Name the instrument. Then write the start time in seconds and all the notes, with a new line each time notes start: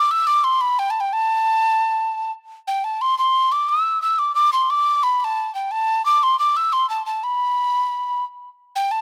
tin whistle
Already playing: D6
0.11 E6
0.27 D6
0.44 C6
0.61 B5
0.79 G5
0.90 A5
1.00 G5
1.13 A5
2.68 G5
2.84 A5
3.01 C6
3.18 C6
3.52 D6
3.69 E6
4.02 E6
4.19 D6
4.35 D6
4.53 C6
4.70 D6
5.03 B5
5.20 B5
5.24 A5
5.55 G5
5.71 A5
6.06 D6
6.23 C6
6.39 D6
6.57 E6
6.73 C6
6.90 A5
7.06 A5
7.24 B5
8.76 G5
8.91 A5